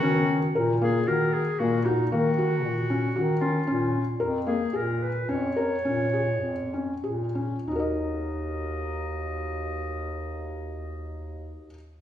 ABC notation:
X:1
M:7/4
L:1/8
Q:1/4=107
K:Ebm
V:1 name="Clarinet"
G2 z A B A G E G4- G F- | F2 z A B c d6 z2 | e12- e2 |]
V:2 name="Felt piano"
D2 B B, G2 B, G B, G2 D G D | D2 B B, A2 D B D A2 D A D | [EGBe]12- [EGBe]2 |]
V:3 name="Bass clarinet" clef=bass
E,2 B,,2 E,2 B,,2 E,2 B,,2 E,2 | B,,2 F,,2 B,,2 F,,2 B,,2 F,,2 B,,2 | E,,12- E,,2 |]